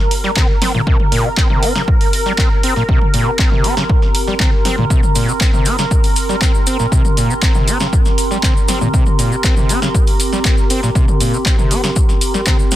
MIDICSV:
0, 0, Header, 1, 5, 480
1, 0, Start_track
1, 0, Tempo, 504202
1, 828, Time_signature, 4, 2, 24, 8
1, 12147, End_track
2, 0, Start_track
2, 0, Title_t, "Ambient pad"
2, 0, Program_c, 0, 92
2, 0, Note_on_c, 0, 60, 84
2, 0, Note_on_c, 0, 67, 92
2, 0, Note_on_c, 0, 79, 76
2, 0, Note_on_c, 0, 84, 89
2, 12147, Note_off_c, 0, 60, 0
2, 12147, Note_off_c, 0, 67, 0
2, 12147, Note_off_c, 0, 79, 0
2, 12147, Note_off_c, 0, 84, 0
2, 12147, End_track
3, 0, Start_track
3, 0, Title_t, "Analog synth pad"
3, 0, Program_c, 1, 89
3, 0, Note_on_c, 1, 70, 82
3, 12147, Note_off_c, 1, 70, 0
3, 12147, End_track
4, 0, Start_track
4, 0, Title_t, "Acid bass"
4, 0, Program_c, 2, 38
4, 230, Note_on_c, 2, 55, 82
4, 295, Note_off_c, 2, 55, 0
4, 347, Note_on_c, 2, 60, 87
4, 448, Note_off_c, 2, 60, 0
4, 587, Note_on_c, 2, 60, 78
4, 689, Note_off_c, 2, 60, 0
4, 710, Note_on_c, 2, 46, 105
4, 775, Note_off_c, 2, 46, 0
4, 827, Note_on_c, 2, 48, 104
4, 928, Note_off_c, 2, 48, 0
4, 1067, Note_on_c, 2, 46, 108
4, 1189, Note_on_c, 2, 48, 99
4, 1203, Note_off_c, 2, 46, 0
4, 1229, Note_off_c, 2, 48, 0
4, 1307, Note_on_c, 2, 60, 87
4, 1408, Note_off_c, 2, 60, 0
4, 1430, Note_on_c, 2, 48, 78
4, 1548, Note_on_c, 2, 60, 77
4, 1563, Note_off_c, 2, 48, 0
4, 1649, Note_off_c, 2, 60, 0
4, 1670, Note_on_c, 2, 49, 81
4, 1735, Note_off_c, 2, 49, 0
4, 2151, Note_on_c, 2, 55, 80
4, 2215, Note_off_c, 2, 55, 0
4, 2268, Note_on_c, 2, 60, 85
4, 2369, Note_off_c, 2, 60, 0
4, 2509, Note_on_c, 2, 60, 80
4, 2610, Note_off_c, 2, 60, 0
4, 2631, Note_on_c, 2, 46, 105
4, 2695, Note_off_c, 2, 46, 0
4, 2749, Note_on_c, 2, 48, 104
4, 2849, Note_off_c, 2, 48, 0
4, 2989, Note_on_c, 2, 46, 106
4, 3111, Note_on_c, 2, 48, 103
4, 3126, Note_off_c, 2, 46, 0
4, 3150, Note_off_c, 2, 48, 0
4, 3228, Note_on_c, 2, 60, 84
4, 3329, Note_off_c, 2, 60, 0
4, 3351, Note_on_c, 2, 48, 80
4, 3467, Note_on_c, 2, 60, 75
4, 3482, Note_off_c, 2, 48, 0
4, 3569, Note_off_c, 2, 60, 0
4, 3590, Note_on_c, 2, 49, 79
4, 3655, Note_off_c, 2, 49, 0
4, 4070, Note_on_c, 2, 55, 81
4, 4135, Note_off_c, 2, 55, 0
4, 4189, Note_on_c, 2, 60, 83
4, 4289, Note_off_c, 2, 60, 0
4, 4429, Note_on_c, 2, 60, 76
4, 4529, Note_off_c, 2, 60, 0
4, 4550, Note_on_c, 2, 46, 103
4, 4615, Note_off_c, 2, 46, 0
4, 4668, Note_on_c, 2, 48, 101
4, 4769, Note_off_c, 2, 48, 0
4, 4907, Note_on_c, 2, 46, 107
4, 5030, Note_on_c, 2, 48, 99
4, 5044, Note_off_c, 2, 46, 0
4, 5069, Note_off_c, 2, 48, 0
4, 5147, Note_on_c, 2, 60, 87
4, 5248, Note_off_c, 2, 60, 0
4, 5270, Note_on_c, 2, 48, 77
4, 5388, Note_on_c, 2, 60, 74
4, 5402, Note_off_c, 2, 48, 0
4, 5489, Note_off_c, 2, 60, 0
4, 5510, Note_on_c, 2, 49, 81
4, 5575, Note_off_c, 2, 49, 0
4, 5990, Note_on_c, 2, 55, 78
4, 6055, Note_off_c, 2, 55, 0
4, 6107, Note_on_c, 2, 60, 85
4, 6208, Note_off_c, 2, 60, 0
4, 6348, Note_on_c, 2, 60, 76
4, 6449, Note_off_c, 2, 60, 0
4, 6470, Note_on_c, 2, 46, 105
4, 6535, Note_off_c, 2, 46, 0
4, 6588, Note_on_c, 2, 48, 102
4, 6689, Note_off_c, 2, 48, 0
4, 6828, Note_on_c, 2, 46, 104
4, 6950, Note_on_c, 2, 48, 101
4, 6964, Note_off_c, 2, 46, 0
4, 6989, Note_off_c, 2, 48, 0
4, 7068, Note_on_c, 2, 60, 84
4, 7169, Note_off_c, 2, 60, 0
4, 7192, Note_on_c, 2, 48, 76
4, 7308, Note_on_c, 2, 60, 77
4, 7322, Note_off_c, 2, 48, 0
4, 7409, Note_off_c, 2, 60, 0
4, 7431, Note_on_c, 2, 49, 81
4, 7495, Note_off_c, 2, 49, 0
4, 7910, Note_on_c, 2, 55, 83
4, 7975, Note_off_c, 2, 55, 0
4, 8028, Note_on_c, 2, 60, 84
4, 8129, Note_off_c, 2, 60, 0
4, 8267, Note_on_c, 2, 60, 75
4, 8369, Note_off_c, 2, 60, 0
4, 8389, Note_on_c, 2, 46, 105
4, 8455, Note_off_c, 2, 46, 0
4, 8508, Note_on_c, 2, 48, 104
4, 8609, Note_off_c, 2, 48, 0
4, 8746, Note_on_c, 2, 46, 106
4, 8869, Note_on_c, 2, 48, 104
4, 8884, Note_off_c, 2, 46, 0
4, 8909, Note_off_c, 2, 48, 0
4, 8987, Note_on_c, 2, 60, 87
4, 9088, Note_off_c, 2, 60, 0
4, 9109, Note_on_c, 2, 48, 79
4, 9228, Note_on_c, 2, 60, 77
4, 9242, Note_off_c, 2, 48, 0
4, 9329, Note_off_c, 2, 60, 0
4, 9351, Note_on_c, 2, 49, 81
4, 9415, Note_off_c, 2, 49, 0
4, 9830, Note_on_c, 2, 55, 81
4, 9895, Note_off_c, 2, 55, 0
4, 9949, Note_on_c, 2, 60, 84
4, 10049, Note_off_c, 2, 60, 0
4, 10188, Note_on_c, 2, 60, 81
4, 10289, Note_off_c, 2, 60, 0
4, 10311, Note_on_c, 2, 46, 103
4, 10375, Note_off_c, 2, 46, 0
4, 10428, Note_on_c, 2, 48, 101
4, 10529, Note_off_c, 2, 48, 0
4, 10668, Note_on_c, 2, 46, 104
4, 10791, Note_on_c, 2, 48, 103
4, 10805, Note_off_c, 2, 46, 0
4, 10829, Note_off_c, 2, 48, 0
4, 10907, Note_on_c, 2, 60, 83
4, 11008, Note_off_c, 2, 60, 0
4, 11030, Note_on_c, 2, 48, 76
4, 11147, Note_on_c, 2, 60, 77
4, 11162, Note_off_c, 2, 48, 0
4, 11249, Note_off_c, 2, 60, 0
4, 11270, Note_on_c, 2, 49, 79
4, 11335, Note_off_c, 2, 49, 0
4, 11751, Note_on_c, 2, 55, 82
4, 11815, Note_off_c, 2, 55, 0
4, 11868, Note_on_c, 2, 60, 84
4, 11969, Note_off_c, 2, 60, 0
4, 12108, Note_on_c, 2, 60, 75
4, 12147, Note_off_c, 2, 60, 0
4, 12147, End_track
5, 0, Start_track
5, 0, Title_t, "Drums"
5, 106, Note_on_c, 9, 46, 111
5, 201, Note_off_c, 9, 46, 0
5, 228, Note_on_c, 9, 38, 38
5, 323, Note_off_c, 9, 38, 0
5, 346, Note_on_c, 9, 47, 81
5, 348, Note_on_c, 9, 36, 113
5, 349, Note_on_c, 9, 39, 123
5, 442, Note_off_c, 9, 47, 0
5, 443, Note_off_c, 9, 36, 0
5, 444, Note_off_c, 9, 39, 0
5, 587, Note_on_c, 9, 38, 86
5, 587, Note_on_c, 9, 46, 114
5, 682, Note_off_c, 9, 38, 0
5, 682, Note_off_c, 9, 46, 0
5, 709, Note_on_c, 9, 47, 81
5, 805, Note_off_c, 9, 47, 0
5, 828, Note_on_c, 9, 36, 127
5, 923, Note_off_c, 9, 36, 0
5, 949, Note_on_c, 9, 47, 88
5, 1045, Note_off_c, 9, 47, 0
5, 1067, Note_on_c, 9, 46, 106
5, 1162, Note_off_c, 9, 46, 0
5, 1308, Note_on_c, 9, 36, 116
5, 1309, Note_on_c, 9, 39, 126
5, 1403, Note_off_c, 9, 36, 0
5, 1405, Note_off_c, 9, 39, 0
5, 1430, Note_on_c, 9, 47, 87
5, 1525, Note_off_c, 9, 47, 0
5, 1548, Note_on_c, 9, 46, 109
5, 1643, Note_off_c, 9, 46, 0
5, 1671, Note_on_c, 9, 38, 83
5, 1766, Note_off_c, 9, 38, 0
5, 1788, Note_on_c, 9, 36, 127
5, 1883, Note_off_c, 9, 36, 0
5, 1912, Note_on_c, 9, 46, 69
5, 2007, Note_off_c, 9, 46, 0
5, 2029, Note_on_c, 9, 46, 113
5, 2124, Note_off_c, 9, 46, 0
5, 2151, Note_on_c, 9, 38, 37
5, 2246, Note_off_c, 9, 38, 0
5, 2268, Note_on_c, 9, 36, 114
5, 2270, Note_on_c, 9, 39, 119
5, 2363, Note_off_c, 9, 36, 0
5, 2365, Note_off_c, 9, 39, 0
5, 2508, Note_on_c, 9, 46, 113
5, 2603, Note_off_c, 9, 46, 0
5, 2630, Note_on_c, 9, 38, 35
5, 2725, Note_off_c, 9, 38, 0
5, 2748, Note_on_c, 9, 36, 122
5, 2843, Note_off_c, 9, 36, 0
5, 2869, Note_on_c, 9, 47, 91
5, 2965, Note_off_c, 9, 47, 0
5, 2987, Note_on_c, 9, 46, 104
5, 3082, Note_off_c, 9, 46, 0
5, 3228, Note_on_c, 9, 36, 114
5, 3229, Note_on_c, 9, 39, 120
5, 3323, Note_off_c, 9, 36, 0
5, 3324, Note_off_c, 9, 39, 0
5, 3350, Note_on_c, 9, 47, 88
5, 3445, Note_off_c, 9, 47, 0
5, 3467, Note_on_c, 9, 46, 105
5, 3562, Note_off_c, 9, 46, 0
5, 3589, Note_on_c, 9, 38, 79
5, 3685, Note_off_c, 9, 38, 0
5, 3708, Note_on_c, 9, 36, 126
5, 3803, Note_off_c, 9, 36, 0
5, 3830, Note_on_c, 9, 38, 37
5, 3925, Note_off_c, 9, 38, 0
5, 3947, Note_on_c, 9, 46, 115
5, 4043, Note_off_c, 9, 46, 0
5, 4070, Note_on_c, 9, 38, 35
5, 4165, Note_off_c, 9, 38, 0
5, 4187, Note_on_c, 9, 47, 81
5, 4188, Note_on_c, 9, 36, 111
5, 4190, Note_on_c, 9, 39, 118
5, 4283, Note_off_c, 9, 36, 0
5, 4283, Note_off_c, 9, 47, 0
5, 4285, Note_off_c, 9, 39, 0
5, 4428, Note_on_c, 9, 38, 79
5, 4428, Note_on_c, 9, 46, 110
5, 4523, Note_off_c, 9, 38, 0
5, 4523, Note_off_c, 9, 46, 0
5, 4550, Note_on_c, 9, 47, 79
5, 4645, Note_off_c, 9, 47, 0
5, 4668, Note_on_c, 9, 36, 121
5, 4671, Note_on_c, 9, 70, 52
5, 4763, Note_off_c, 9, 36, 0
5, 4766, Note_off_c, 9, 70, 0
5, 4790, Note_on_c, 9, 47, 98
5, 4790, Note_on_c, 9, 70, 27
5, 4885, Note_off_c, 9, 47, 0
5, 4885, Note_off_c, 9, 70, 0
5, 4906, Note_on_c, 9, 70, 90
5, 4907, Note_on_c, 9, 46, 103
5, 5001, Note_off_c, 9, 70, 0
5, 5003, Note_off_c, 9, 46, 0
5, 5035, Note_on_c, 9, 70, 42
5, 5130, Note_off_c, 9, 70, 0
5, 5147, Note_on_c, 9, 36, 113
5, 5149, Note_on_c, 9, 39, 119
5, 5155, Note_on_c, 9, 70, 53
5, 5243, Note_off_c, 9, 36, 0
5, 5245, Note_off_c, 9, 39, 0
5, 5250, Note_off_c, 9, 70, 0
5, 5269, Note_on_c, 9, 47, 93
5, 5272, Note_on_c, 9, 70, 25
5, 5364, Note_off_c, 9, 47, 0
5, 5367, Note_off_c, 9, 70, 0
5, 5385, Note_on_c, 9, 70, 88
5, 5386, Note_on_c, 9, 46, 102
5, 5480, Note_off_c, 9, 70, 0
5, 5482, Note_off_c, 9, 46, 0
5, 5506, Note_on_c, 9, 70, 36
5, 5510, Note_on_c, 9, 38, 80
5, 5601, Note_off_c, 9, 70, 0
5, 5605, Note_off_c, 9, 38, 0
5, 5627, Note_on_c, 9, 36, 122
5, 5628, Note_on_c, 9, 70, 52
5, 5722, Note_off_c, 9, 36, 0
5, 5723, Note_off_c, 9, 70, 0
5, 5748, Note_on_c, 9, 70, 27
5, 5750, Note_on_c, 9, 46, 66
5, 5843, Note_off_c, 9, 70, 0
5, 5845, Note_off_c, 9, 46, 0
5, 5865, Note_on_c, 9, 70, 87
5, 5867, Note_on_c, 9, 46, 111
5, 5960, Note_off_c, 9, 70, 0
5, 5962, Note_off_c, 9, 46, 0
5, 5989, Note_on_c, 9, 38, 36
5, 5996, Note_on_c, 9, 70, 40
5, 6085, Note_off_c, 9, 38, 0
5, 6092, Note_off_c, 9, 70, 0
5, 6107, Note_on_c, 9, 36, 109
5, 6110, Note_on_c, 9, 39, 112
5, 6112, Note_on_c, 9, 70, 55
5, 6202, Note_off_c, 9, 36, 0
5, 6205, Note_off_c, 9, 39, 0
5, 6207, Note_off_c, 9, 70, 0
5, 6231, Note_on_c, 9, 70, 27
5, 6326, Note_off_c, 9, 70, 0
5, 6347, Note_on_c, 9, 70, 99
5, 6348, Note_on_c, 9, 46, 109
5, 6442, Note_off_c, 9, 70, 0
5, 6443, Note_off_c, 9, 46, 0
5, 6466, Note_on_c, 9, 70, 42
5, 6470, Note_on_c, 9, 38, 36
5, 6561, Note_off_c, 9, 70, 0
5, 6566, Note_off_c, 9, 38, 0
5, 6587, Note_on_c, 9, 36, 119
5, 6593, Note_on_c, 9, 70, 54
5, 6682, Note_off_c, 9, 36, 0
5, 6688, Note_off_c, 9, 70, 0
5, 6710, Note_on_c, 9, 47, 97
5, 6710, Note_on_c, 9, 70, 27
5, 6805, Note_off_c, 9, 47, 0
5, 6805, Note_off_c, 9, 70, 0
5, 6828, Note_on_c, 9, 46, 100
5, 6834, Note_on_c, 9, 70, 91
5, 6923, Note_off_c, 9, 46, 0
5, 6929, Note_off_c, 9, 70, 0
5, 6955, Note_on_c, 9, 70, 41
5, 7050, Note_off_c, 9, 70, 0
5, 7067, Note_on_c, 9, 36, 108
5, 7070, Note_on_c, 9, 39, 117
5, 7070, Note_on_c, 9, 70, 49
5, 7162, Note_off_c, 9, 36, 0
5, 7165, Note_off_c, 9, 39, 0
5, 7165, Note_off_c, 9, 70, 0
5, 7183, Note_on_c, 9, 70, 26
5, 7189, Note_on_c, 9, 47, 93
5, 7278, Note_off_c, 9, 70, 0
5, 7285, Note_off_c, 9, 47, 0
5, 7307, Note_on_c, 9, 46, 99
5, 7311, Note_on_c, 9, 70, 82
5, 7403, Note_off_c, 9, 46, 0
5, 7406, Note_off_c, 9, 70, 0
5, 7424, Note_on_c, 9, 70, 41
5, 7430, Note_on_c, 9, 38, 82
5, 7519, Note_off_c, 9, 70, 0
5, 7525, Note_off_c, 9, 38, 0
5, 7547, Note_on_c, 9, 36, 119
5, 7548, Note_on_c, 9, 70, 48
5, 7643, Note_off_c, 9, 36, 0
5, 7644, Note_off_c, 9, 70, 0
5, 7666, Note_on_c, 9, 70, 25
5, 7670, Note_on_c, 9, 38, 37
5, 7761, Note_off_c, 9, 70, 0
5, 7765, Note_off_c, 9, 38, 0
5, 7787, Note_on_c, 9, 46, 106
5, 7792, Note_on_c, 9, 70, 82
5, 7882, Note_off_c, 9, 46, 0
5, 7888, Note_off_c, 9, 70, 0
5, 7909, Note_on_c, 9, 38, 38
5, 7915, Note_on_c, 9, 70, 36
5, 8005, Note_off_c, 9, 38, 0
5, 8011, Note_off_c, 9, 70, 0
5, 8027, Note_on_c, 9, 36, 103
5, 8027, Note_on_c, 9, 47, 84
5, 8029, Note_on_c, 9, 39, 111
5, 8032, Note_on_c, 9, 70, 52
5, 8122, Note_off_c, 9, 47, 0
5, 8123, Note_off_c, 9, 36, 0
5, 8125, Note_off_c, 9, 39, 0
5, 8127, Note_off_c, 9, 70, 0
5, 8160, Note_on_c, 9, 70, 27
5, 8255, Note_off_c, 9, 70, 0
5, 8267, Note_on_c, 9, 70, 91
5, 8268, Note_on_c, 9, 38, 85
5, 8268, Note_on_c, 9, 46, 104
5, 8362, Note_off_c, 9, 70, 0
5, 8363, Note_off_c, 9, 38, 0
5, 8363, Note_off_c, 9, 46, 0
5, 8390, Note_on_c, 9, 70, 38
5, 8391, Note_on_c, 9, 47, 85
5, 8485, Note_off_c, 9, 70, 0
5, 8486, Note_off_c, 9, 47, 0
5, 8507, Note_on_c, 9, 36, 117
5, 8510, Note_on_c, 9, 70, 47
5, 8603, Note_off_c, 9, 36, 0
5, 8605, Note_off_c, 9, 70, 0
5, 8625, Note_on_c, 9, 70, 24
5, 8630, Note_on_c, 9, 47, 99
5, 8720, Note_off_c, 9, 70, 0
5, 8725, Note_off_c, 9, 47, 0
5, 8748, Note_on_c, 9, 46, 97
5, 8750, Note_on_c, 9, 70, 88
5, 8843, Note_off_c, 9, 46, 0
5, 8845, Note_off_c, 9, 70, 0
5, 8873, Note_on_c, 9, 70, 41
5, 8968, Note_off_c, 9, 70, 0
5, 8987, Note_on_c, 9, 36, 106
5, 8989, Note_on_c, 9, 39, 121
5, 8989, Note_on_c, 9, 70, 53
5, 9083, Note_off_c, 9, 36, 0
5, 9084, Note_off_c, 9, 39, 0
5, 9084, Note_off_c, 9, 70, 0
5, 9108, Note_on_c, 9, 70, 25
5, 9110, Note_on_c, 9, 47, 96
5, 9203, Note_off_c, 9, 70, 0
5, 9205, Note_off_c, 9, 47, 0
5, 9228, Note_on_c, 9, 46, 97
5, 9233, Note_on_c, 9, 70, 84
5, 9323, Note_off_c, 9, 46, 0
5, 9329, Note_off_c, 9, 70, 0
5, 9350, Note_on_c, 9, 38, 86
5, 9351, Note_on_c, 9, 70, 38
5, 9445, Note_off_c, 9, 38, 0
5, 9446, Note_off_c, 9, 70, 0
5, 9467, Note_on_c, 9, 36, 116
5, 9469, Note_on_c, 9, 70, 52
5, 9563, Note_off_c, 9, 36, 0
5, 9565, Note_off_c, 9, 70, 0
5, 9588, Note_on_c, 9, 70, 25
5, 9591, Note_on_c, 9, 46, 63
5, 9684, Note_off_c, 9, 70, 0
5, 9686, Note_off_c, 9, 46, 0
5, 9707, Note_on_c, 9, 46, 104
5, 9712, Note_on_c, 9, 70, 82
5, 9802, Note_off_c, 9, 46, 0
5, 9808, Note_off_c, 9, 70, 0
5, 9829, Note_on_c, 9, 38, 38
5, 9834, Note_on_c, 9, 70, 38
5, 9925, Note_off_c, 9, 38, 0
5, 9929, Note_off_c, 9, 70, 0
5, 9947, Note_on_c, 9, 36, 106
5, 9950, Note_on_c, 9, 39, 114
5, 9950, Note_on_c, 9, 70, 54
5, 10042, Note_off_c, 9, 36, 0
5, 10045, Note_off_c, 9, 39, 0
5, 10045, Note_off_c, 9, 70, 0
5, 10067, Note_on_c, 9, 70, 25
5, 10163, Note_off_c, 9, 70, 0
5, 10188, Note_on_c, 9, 46, 100
5, 10189, Note_on_c, 9, 70, 97
5, 10283, Note_off_c, 9, 46, 0
5, 10284, Note_off_c, 9, 70, 0
5, 10309, Note_on_c, 9, 38, 38
5, 10312, Note_on_c, 9, 70, 38
5, 10405, Note_off_c, 9, 38, 0
5, 10408, Note_off_c, 9, 70, 0
5, 10427, Note_on_c, 9, 36, 115
5, 10429, Note_on_c, 9, 70, 48
5, 10522, Note_off_c, 9, 36, 0
5, 10525, Note_off_c, 9, 70, 0
5, 10549, Note_on_c, 9, 47, 101
5, 10550, Note_on_c, 9, 70, 25
5, 10644, Note_off_c, 9, 47, 0
5, 10645, Note_off_c, 9, 70, 0
5, 10667, Note_on_c, 9, 46, 100
5, 10671, Note_on_c, 9, 70, 97
5, 10762, Note_off_c, 9, 46, 0
5, 10766, Note_off_c, 9, 70, 0
5, 10794, Note_on_c, 9, 70, 39
5, 10889, Note_off_c, 9, 70, 0
5, 10907, Note_on_c, 9, 36, 106
5, 10909, Note_on_c, 9, 39, 121
5, 10913, Note_on_c, 9, 70, 51
5, 11002, Note_off_c, 9, 36, 0
5, 11004, Note_off_c, 9, 39, 0
5, 11008, Note_off_c, 9, 70, 0
5, 11029, Note_on_c, 9, 47, 97
5, 11032, Note_on_c, 9, 70, 27
5, 11125, Note_off_c, 9, 47, 0
5, 11127, Note_off_c, 9, 70, 0
5, 11147, Note_on_c, 9, 46, 100
5, 11151, Note_on_c, 9, 70, 90
5, 11242, Note_off_c, 9, 46, 0
5, 11246, Note_off_c, 9, 70, 0
5, 11267, Note_on_c, 9, 70, 37
5, 11268, Note_on_c, 9, 38, 89
5, 11363, Note_off_c, 9, 70, 0
5, 11364, Note_off_c, 9, 38, 0
5, 11385, Note_on_c, 9, 70, 53
5, 11387, Note_on_c, 9, 36, 117
5, 11480, Note_off_c, 9, 70, 0
5, 11483, Note_off_c, 9, 36, 0
5, 11509, Note_on_c, 9, 38, 40
5, 11513, Note_on_c, 9, 70, 26
5, 11604, Note_off_c, 9, 38, 0
5, 11608, Note_off_c, 9, 70, 0
5, 11627, Note_on_c, 9, 46, 105
5, 11629, Note_on_c, 9, 70, 82
5, 11722, Note_off_c, 9, 46, 0
5, 11725, Note_off_c, 9, 70, 0
5, 11750, Note_on_c, 9, 38, 40
5, 11752, Note_on_c, 9, 70, 37
5, 11845, Note_off_c, 9, 38, 0
5, 11847, Note_off_c, 9, 70, 0
5, 11862, Note_on_c, 9, 70, 58
5, 11866, Note_on_c, 9, 47, 82
5, 11868, Note_on_c, 9, 36, 101
5, 11869, Note_on_c, 9, 39, 119
5, 11957, Note_off_c, 9, 70, 0
5, 11962, Note_off_c, 9, 47, 0
5, 11963, Note_off_c, 9, 36, 0
5, 11964, Note_off_c, 9, 39, 0
5, 11990, Note_on_c, 9, 70, 25
5, 12085, Note_off_c, 9, 70, 0
5, 12103, Note_on_c, 9, 70, 88
5, 12107, Note_on_c, 9, 38, 86
5, 12107, Note_on_c, 9, 46, 103
5, 12147, Note_off_c, 9, 38, 0
5, 12147, Note_off_c, 9, 46, 0
5, 12147, Note_off_c, 9, 70, 0
5, 12147, End_track
0, 0, End_of_file